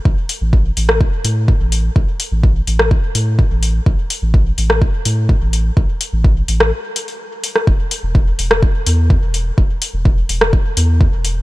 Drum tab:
HH |--o---o---o---o-|--o---o---o---o-|--o---o---o---o-|--o---o---oo--o-|
SD |-------r--------|-------r--------|-------r--------|-------r-------r|
BD |o---o---o---o---|o---o---o---o---|o---o---o---o---|o---o-----------|

HH |--o---o---o---o-|--o---o---o---o-|
SD |-------r--------|-------r--------|
BD |o---o---o---o---|o---o---o---o---|